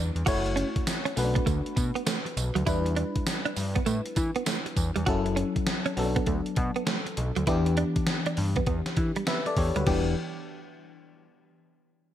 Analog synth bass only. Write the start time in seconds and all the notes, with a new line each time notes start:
Already playing: E2
0.16 E2
0.27 F#1
1.17 B1
1.47 D2
1.77 B2
2.37 B1
2.56 D2
2.67 E2
3.57 G2
3.87 A2
4.17 E3
4.77 E2
4.97 E2
5.07 F#1
5.97 B1
6.27 D2
6.57 B2
7.18 B1
7.37 D2
7.47 E2
8.38 G2
8.67 E2
8.97 E3
9.57 E2
9.76 D2
9.87 E1